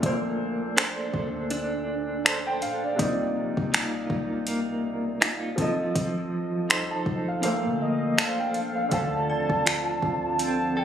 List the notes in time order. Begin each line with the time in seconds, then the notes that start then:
Already playing: D3 F4 A4
0.00 A#1 A#2 A3 A#3 D4, kick, closed hi-hat
0.06 C5
0.77 D4 A4 C5, finger snap, closed hi-hat
1.14 D2, kick
1.50 D4, closed hi-hat
2.25 D4 A4 C5 A5, finger snap, closed hi-hat
2.47 G5
2.62 A#2 F5, closed hi-hat
2.84 D5
2.96 C2 C3 A#3 D#4, kick, closed hi-hat
3.00 F4 D5
3.36 A#1
3.57 C2, kick
3.73 A#3 D#4 F4, finger snap, closed hi-hat
4.10 C2, kick
4.47 A#3, closed hi-hat
5.21 A#3 D#4 F4, finger snap, closed hi-hat
5.56 F1 F3 C4 A4, kick, closed hi-hat
5.62 D#5
5.95 F1 F3, kick, closed hi-hat
6.69 C2 D#4 A4 C5 C6, finger snap, closed hi-hat
6.91 F1 A5
7.06 A#1, kick
7.28 F5
7.41 A#2 A3 A#3 C5, closed hi-hat
7.47 F5
7.65 D3
7.82 D#5
8.17 D4 A4 C5 F5 A5, finger snap, closed hi-hat
8.39 G5
8.54 closed hi-hat
8.76 F5
8.89 D2 D3 F3 A3 C4 D4 A4 C5, kick, closed hi-hat
8.93 F5 A5
9.29 D#2 D5
9.50 D2, kick
9.66 F4, finger snap, closed hi-hat
9.87 D#2
10.02 D2, kick
10.39 C4 A5, closed hi-hat
10.77 A4 G5